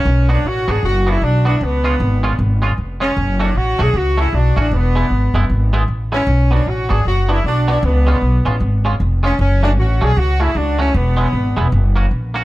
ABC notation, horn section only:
X:1
M:4/4
L:1/8
Q:"Swing" 1/4=154
K:Bdor
V:1 name="Horn section"
C D F G F E D D | B,4 z3 C- | C D F G F E D D | B,4 z3 C- |
C D F G F E D D | B,4 z3 C | C D F G F E D C | B,4 z4 |]